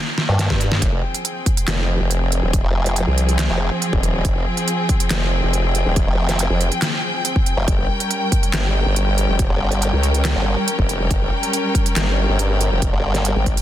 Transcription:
0.18 snare
0.29 G2
0.39 snare, closed hi-hat
0.50 G2, kick, snare
0.61 closed hi-hat
0.72 snare
0.82 F1 F3 C4 G#4 G5, kick, closed hi-hat
1.14 closed hi-hat
1.25 closed hi-hat
1.46 kick, closed hi-hat
1.57 closed hi-hat
1.68 F1, snare, clap, closed hi-hat
2.00 F1
2.11 closed hi-hat
2.32 closed hi-hat
2.43 D#1
2.53 kick, closed hi-hat
2.64 F1
2.86 closed hi-hat
2.96 closed hi-hat
3.07 C2
3.18 closed hi-hat
3.29 closed hi-hat
3.39 snare, clap, closed hi-hat
3.50 F1
3.82 closed hi-hat
3.93 D#1, kick
4.03 closed hi-hat
4.25 F1, kick, closed hi-hat
4.57 closed hi-hat
4.68 closed hi-hat
4.89 kick, closed hi-hat
5.00 closed hi-hat
5.10 F1, snare, clap, closed hi-hat
5.43 F1
5.53 closed hi-hat
5.75 closed hi-hat
5.86 D#1
5.96 kick, closed hi-hat
6.07 F1
6.29 snare, closed hi-hat
6.39 closed hi-hat
6.50 F1
6.61 closed hi-hat
6.72 closed hi-hat
6.82 snare, clap, closed hi-hat
7.25 closed hi-hat
7.36 kick
7.46 closed hi-hat
7.57 F1
7.68 G1 G3 C#4 A#4, kick, closed hi-hat
8.00 closed hi-hat
8.11 closed hi-hat
8.32 kick, closed hi-hat
8.43 closed hi-hat
8.53 G1, snare, clap, closed hi-hat
8.86 G1
8.96 closed hi-hat
9.18 closed hi-hat
9.29 F1
9.39 kick, closed hi-hat
9.50 G1
9.72 closed hi-hat
9.82 closed hi-hat
9.93 C#2
10.03 closed hi-hat
10.14 closed hi-hat
10.25 snare, clap, closed hi-hat
10.36 G1
10.68 closed hi-hat
10.79 F1, kick
10.89 closed hi-hat
11.11 G1, kick, closed hi-hat
11.43 closed hi-hat
11.53 closed hi-hat
11.75 kick, closed hi-hat
11.86 closed hi-hat
11.96 G1, snare, clap, closed hi-hat
12.29 G1
12.39 closed hi-hat
12.61 closed hi-hat
12.72 F1
12.82 kick, closed hi-hat
12.93 G1
13.15 snare, closed hi-hat
13.25 closed hi-hat
13.36 G#1
13.46 kick, closed hi-hat
13.57 closed hi-hat

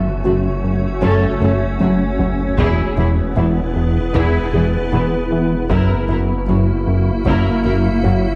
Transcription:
Already playing: F#1 A3 C#4 F#4 C#5
0.25 F#1 F#2 A3 F#4
0.64 F#2
1.02 F#1 F#2 F#3 C#4 A4, taiko
1.41 F#1 F#2 A3 C#4 A4, taiko low-mid
1.80 F#1 F#2 F#3 A3 C#4 F#4, taiko high
2.19 F#3, taiko low
2.58 E1 E2 E3 B3 E4 G#4 B4, taiko
2.97 E1 E2 E4 G#4
3.37 E1 E2 B3 E4
3.76 E2
4.14 E1 E2 E3 E4 G#4, taiko
4.54 E1 E2 G#3 E4 G#4
4.92 E1 E2 E3 B3 E4
5.32 E3
5.69 F#1 F#2 F#3 A#3 E4 F#4 A#4 E5, taiko
6.09 F#1 F#2 E4 A#4
6.48 F#1 F#2 C#4 E4 F#4
6.88 F#2
7.25 F#1 F#2 F#3 E4 A#4, taiko
7.65 F#1 F#2 A#3 E4 A#4
8.04 F#1 F#2 F#3 C#4 F#4

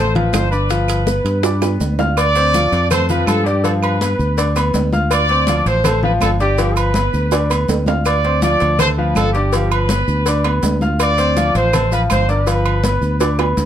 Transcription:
Already playing: A1 A3 A4 C5 A5
0.14 F3 F4 B4 F5, high conga, low conga, high timbale
0.32 G1 C5, high bongo, low bongo, high conga, high timbale, low timbale, claves, maracas
0.50 D4 B4 D5 D6, high conga, maracas
0.70 F3 F4 F5, high bongo, high conga, high timbale, maracas
0.88 high bongo, high conga, high timbale, claves, maracas
1.07 B3 B4 B5, high bongo, high conga, maracas
1.25 G2, high timbale, maracas
1.43 D4 D5 D6, high bongo, high conga, high timbale, maracas
1.62 B3 B4 B5, high bongo, high conga, high timbale, claves, maracas
1.80 D2, high conga, low timbale, maracas
1.99 F4 F5 F6, low bongo, high conga, low timbale, maracas
2.17 D5, cowbell, high conga, low agogo, claves, maracas
2.35 C4 C5 C6, cowbell, high conga, maracas
2.54 F3 F4 F5, cowbell, high conga, low agogo, maracas
2.72 F2, cowbell, high conga, low agogo, maracas
2.90 A3 A4 C5 A5, cowbell, high conga, low conga, low agogo, claves, maracas
3.09 F3 F4 B4 F5, high conga, low conga, maracas
3.26 G2 A4, cowbell, high conga, low agogo, claves, maracas
3.45 D4 G4 D5 D6, cowbell, high conga, maracas
3.63 F3 F4 A4 F5, cowbell, high conga, low agogo, maracas
3.82 B4, high conga, low agogo, claves
4.01 B3 B4 B5, cowbell, high conga, low agogo, maracas
4.19 D2, high conga, maracas
4.38 D4 D5 D6, cowbell, high conga, low agogo, maracas
4.56 B3 B4 B5, cowbell, high conga, low agogo, claves, maracas
4.74 D2, cowbell, high conga, low timbale, maracas
4.93 F4 F5 F6, high conga, maracas
5.11 D5, cowbell, high conga, low agogo, claves, maracas
5.29 C4 C5 C6, cowbell, high conga
5.47 F3 F4 F5, cowbell, high conga, low agogo, maracas
5.66 A1 C5, cowbell, high conga, low agogo, maracas
5.84 A3 A4 A5, cowbell, high conga, low conga, low agogo, claves, maracas
6.03 F3 F4 B4 F5, high conga, low conga
6.21 G1 A4, cowbell, high conga, low timbale, low agogo, claves, maracas
6.39 D4 G4 D5 D6, cowbell, high conga, maracas
6.58 F3 F4 F5, cowbell, high conga, low agogo, maracas
6.76 B4, high conga, low agogo, claves, maracas
6.94 B3 B4 B5, cowbell, high conga, low agogo, maracas
7.13 D2, high conga, maracas
7.32 D4 D5 D6, cowbell, high conga, high timbale, low agogo, maracas
7.50 B3 B4 B5, cowbell, high conga, low agogo, claves, maracas
7.69 D2, cowbell, high conga, low timbale, maracas
7.86 F4 F5 F6, high conga, low timbale, maracas
8.05 D5, cowbell, high conga, low agogo, claves, maracas
8.24 C4 C5 C6, cowbell, high conga
8.42 F3 F4 D5 F5, cowbell, high conga, low agogo, maracas
8.60 D2, cowbell, high conga, low agogo, maracas
8.79 A3 A4 C5 A5, cowbell, high conga, low conga, low agogo, claves, maracas
8.97 F3 F4 B4 F5, high conga
9.15 G1 A4, cowbell, high conga, low timbale, low agogo, claves, maracas
9.33 D4 G4 D5 D6, cowbell, high conga, maracas
9.52 F3 F4 F5, cowbell, high conga, low agogo, maracas
9.70 B4, high conga, low agogo, claves
9.89 B3 B4 B5, cowbell, high conga, low agogo, maracas
10.08 D2, high conga, maracas
10.26 D4 D5 D6, cowbell, high conga, low agogo, maracas
10.44 B3 B4 B5, cowbell, high conga, low agogo, claves
10.63 D2, cowbell, high conga, low timbale, maracas
10.81 F4 F5 F6, high conga, maracas
11.00 D5, cowbell, low agogo, claves, maracas
11.18 C4 C5 C6, cowbell, high conga, maracas
11.36 F3 F4 F5, cowbell, high conga, low agogo, maracas
11.55 A1 C5, cowbell, high conga, low agogo, maracas
11.73 A3 A4 A5, cowbell, high conga, low conga, low agogo, claves, maracas
11.92 F3 F4 B4 F5, high conga, maracas
12.10 G1 C5, cowbell, high conga, low agogo, claves, maracas
12.29 D4 B4 D5 D6, cowbell, high conga, maracas
12.46 F3 F4 F5, cowbell, high conga, low agogo, maracas
12.66 high conga, low agogo, claves
12.84 B3 B4 B5, cowbell, high conga, low agogo, maracas
13.01 D2, high conga, maracas
13.20 D4 D5 D6, cowbell, high conga, high timbale, low agogo, maracas
13.38 B3 B4 B5, cowbell, high conga, high timbale, low agogo, claves
13.57 D2, cowbell, high conga, maracas

